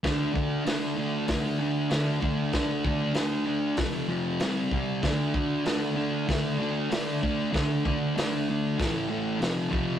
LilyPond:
<<
  \new Staff \with { instrumentName = "Distorted electric guitar" } { \time 4/4 \key d \minor \tempo 4 = 96 <d a d'>8 <d a d'>8 <d a d'>8 <d a d'>8 <d a d'>8 <d a d'>8 <d a d'>8 <d a d'>8 | <d a d'>8 <d a d'>8 <d a d'>8 <d a d'>8 <f, c f>8 <f, c f>8 <c g c'>8 <c g c'>8 | <d a d'>8 <d a d'>8 <d a d'>8 <d a d'>8 <d a d'>8 <d a d'>8 <d a d'>8 <d a d'>8 | <d a d'>8 <d a d'>8 <d a d'>8 <d a d'>8 <a, e a>8 <a, e a>8 <f, c f>8 <f, c f>8 | }
  \new DrumStaff \with { instrumentName = "Drums" } \drummode { \time 4/4 <hho bd sn>8 bd8 <hho sn>4 <hho bd sn>4 <hho sn>8 bd8 | <hho bd sn>8 bd8 <hho sn>4 <hho bd sn>4 <hho sn>8 bd8 | <hho bd sn>8 bd8 <hho sn>4 <hho bd sn>4 <hho sn>8 bd8 | <hho bd sn>8 bd8 <hho sn>4 <hho bd sn>4 <hho sn>8 bd8 | }
>>